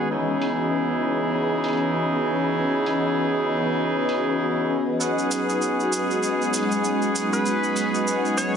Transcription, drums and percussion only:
0.42 open hi-hat medium
1.64 open hi-hat medium
1.68 open hi-hat soft
1.73 open hi-hat soft
1.77 open hi-hat soft
2.86 open hi-hat medium
4.09 open hi-hat medium
5.01 shaker soft
5.18 shaker soft
5.31 open hi-hat medium
5.31 shaker medium
5.49 shaker soft
5.62 shaker medium
5.80 shaker soft
5.93 shaker medium
6.11 shaker soft
6.23 shaker soft
6.42 shaker soft
6.54 open hi-hat medium
6.54 shaker medium
6.57 open hi-hat soft
6.60 open hi-hat soft
6.63 open hi-hat soft
6.69 open hi-hat soft
6.69 shaker soft
6.84 shaker soft
7.02 shaker soft
7.16 shaker medium
7.33 shaker soft
7.46 shaker soft
7.64 shaker soft
7.76 open hi-hat medium
7.76 shaker medium
7.95 shaker soft
8.07 shaker soft
8.25 shaker soft
8.38 shaker medium

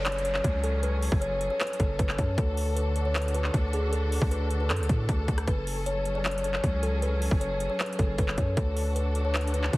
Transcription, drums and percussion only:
0.06 clap loud
0.06 closed hi-hat soft
0.12 closed hi-hat medium
0.18 closed hi-hat medium
0.25 closed hi-hat medium
0.34 clap medium
0.44 kick loud
0.44 closed hi-hat medium
0.64 closed hi-hat medium
0.83 closed hi-hat medium
1.02 open hi-hat medium
1.12 kick loud
1.22 closed hi-hat medium
1.41 closed hi-hat medium
1.60 clap loud
1.60 closed hi-hat soft
1.67 closed hi-hat medium
1.73 closed hi-hat medium
1.80 kick loud
1.80 closed hi-hat medium
1.99 kick medium
1.99 closed hi-hat medium
2.09 clap medium
2.18 kick medium
2.18 closed hi-hat medium
2.38 kick loud
2.38 closed hi-hat medium
2.57 open hi-hat medium
2.77 closed hi-hat medium
2.96 closed hi-hat medium
3.15 clap loud
3.15 closed hi-hat soft
3.22 closed hi-hat medium
3.28 closed hi-hat medium
3.35 closed hi-hat medium
3.44 clap medium
3.54 kick loud
3.54 closed hi-hat medium
3.73 closed hi-hat medium
3.93 closed hi-hat medium
4.12 open hi-hat medium
4.22 kick loud
4.31 closed hi-hat medium
4.51 closed hi-hat medium
4.70 clap loud
4.70 closed hi-hat soft
4.76 closed hi-hat medium
4.83 closed hi-hat medium
4.89 kick loud
4.89 closed hi-hat medium
5.09 kick medium
5.09 closed hi-hat medium
5.28 kick medium
5.28 closed hi-hat soft
5.38 cross-stick medium
5.38 closed hi-hat medium
5.47 kick loud
5.47 closed hi-hat medium
5.67 open hi-hat medium
5.86 closed hi-hat medium
6.05 closed hi-hat medium
6.25 clap loud
6.25 closed hi-hat soft
6.31 closed hi-hat medium
6.38 closed hi-hat medium
6.44 closed hi-hat medium
6.54 clap medium
6.64 kick medium
6.64 closed hi-hat medium
6.83 closed hi-hat medium
7.02 closed hi-hat medium
7.22 open hi-hat medium
7.31 kick loud
7.41 closed hi-hat medium
7.60 closed hi-hat medium
7.80 clap loud
7.80 closed hi-hat soft
7.86 closed hi-hat medium
7.93 closed hi-hat medium
7.99 kick loud
7.99 closed hi-hat medium
8.18 kick medium
8.18 closed hi-hat medium
8.28 clap medium
8.38 kick medium
8.38 closed hi-hat medium
8.57 kick loud
8.57 closed hi-hat medium
8.77 open hi-hat medium
8.96 closed hi-hat medium
9.15 closed hi-hat medium
9.35 clap loud
9.35 closed hi-hat soft
9.41 closed hi-hat medium
9.47 closed hi-hat medium
9.54 closed hi-hat medium
9.63 clap medium
9.73 kick loud
9.73 closed hi-hat medium

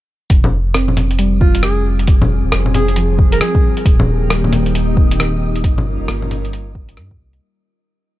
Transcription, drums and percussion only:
0.30 kick loud
0.30 closed hi-hat medium
0.44 low bongo medium
0.74 cross-stick loud
0.74 closed hi-hat medium
0.88 low bongo soft
0.97 closed hi-hat medium
0.97 low bongo soft
1.11 closed hi-hat soft
1.19 closed hi-hat medium
1.41 kick loud
1.55 closed hi-hat medium
1.63 cross-stick medium
1.63 closed hi-hat medium
1.99 closed hi-hat soft
2.07 kick loud
2.07 closed hi-hat medium
2.22 low bongo medium
2.52 cross-stick loud
2.52 closed hi-hat medium
2.66 low bongo soft
2.74 closed hi-hat medium
2.74 low bongo soft
2.88 closed hi-hat soft
2.96 closed hi-hat medium
3.19 kick loud
3.32 closed hi-hat medium
3.41 cross-stick loud
3.41 closed hi-hat medium
3.55 kick loud
3.77 closed hi-hat soft
3.86 kick loud
3.86 closed hi-hat medium
4.00 low bongo medium
4.30 cross-stick loud
4.30 closed hi-hat medium
4.44 low bongo soft
4.53 closed hi-hat medium
4.53 low bongo soft
4.66 closed hi-hat soft
4.75 closed hi-hat medium
4.97 kick loud
5.11 closed hi-hat medium
5.20 cross-stick loud
5.20 closed hi-hat medium
5.56 closed hi-hat soft
5.64 kick loud
5.64 closed hi-hat medium
5.78 low bongo medium
6.08 cross-stick loud
6.08 closed hi-hat medium
6.22 low bongo soft
6.31 closed hi-hat medium
6.31 low bongo soft
6.45 closed hi-hat soft
6.53 closed hi-hat medium
6.75 kick loud
6.89 closed hi-hat medium
6.97 cross-stick loud
6.97 closed hi-hat medium
7.11 kick loud
7.33 closed hi-hat soft

